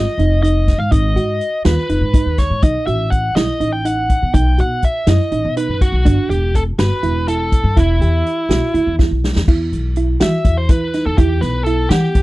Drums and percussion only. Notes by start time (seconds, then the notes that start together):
0.19 closed hi-hat
0.44 closed hi-hat
0.68 kick, snare, closed hi-hat
0.92 kick, closed hi-hat
1.17 closed hi-hat
1.41 closed hi-hat
1.65 snare, closed hi-hat
1.89 closed hi-hat
2.14 kick, closed hi-hat
2.38 kick, snare, closed hi-hat
2.62 kick, closed hi-hat
2.87 closed hi-hat
3.12 kick, closed hi-hat
3.36 snare, closed hi-hat
3.61 closed hi-hat
3.85 closed hi-hat
4.10 kick, closed hi-hat
4.34 kick, closed hi-hat
4.58 closed hi-hat
4.82 kick, closed hi-hat
5.07 snare, closed hi-hat
5.32 closed hi-hat
5.57 closed hi-hat
5.81 kick, closed hi-hat
6.06 kick, closed hi-hat
6.31 closed hi-hat
6.55 kick, closed hi-hat
6.79 snare, closed hi-hat
7.03 closed hi-hat
7.28 closed hi-hat
7.52 kick, closed hi-hat
7.77 kick, closed hi-hat
8.02 closed hi-hat
8.26 closed hi-hat
8.50 snare, closed hi-hat
8.75 closed hi-hat
8.99 kick, snare
9.24 snare
9.36 snare
9.48 kick, crash
9.73 closed hi-hat
9.96 closed hi-hat
10.20 snare, closed hi-hat
10.45 kick, closed hi-hat
10.69 kick, closed hi-hat
10.94 snare, closed hi-hat
11.18 kick, closed hi-hat
11.42 snare, closed hi-hat
11.66 closed hi-hat
11.91 snare, closed hi-hat
12.15 kick, closed hi-hat